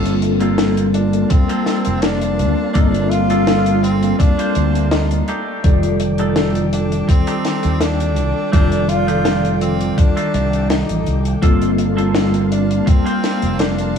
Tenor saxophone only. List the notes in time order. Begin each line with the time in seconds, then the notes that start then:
0.94 D4
1.30 C4
2.02 D4
2.73 D4
2.82 D#4
2.89 D4
3.10 F4
3.83 C4
4.19 D4
4.91 D#4
6.73 D4
7.10 C4
7.82 D4
8.53 D4
8.89 F4
9.62 C4
9.98 D4
10.69 D#4
12.52 D4
12.87 C4
13.60 D4